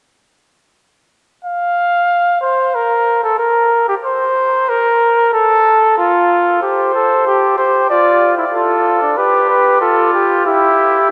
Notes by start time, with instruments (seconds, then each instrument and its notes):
1.45 trumpet F5
2.41 trumpet C5
2.75 trumpet A#4
3.23 trumpet A4
3.39 trumpet A#4
3.88 trumpet G4
4.06 trumpet C5
4.69 trumpet A#4
5.34 trumpet A4
5.98 trumpet F4
6.62 trumpet G4, flugelhorn C5
6.95 trumpet A4
7.27 trumpet G4
7.58 flugelhorn G4, trumpet C5
7.90 flugelhorn F4, trumpet D5
8.38 flugelhorn E4
8.54 flugelhorn F4, trumpet A4
9.02 flugelhorn D4
9.18 flugelhorn G4, trumpet B4
9.49 trumpet B4
9.81 flugelhorn F4, trumpet A4
10.14 trumpet G4
10.46 flugelhorn E4, trumpet G4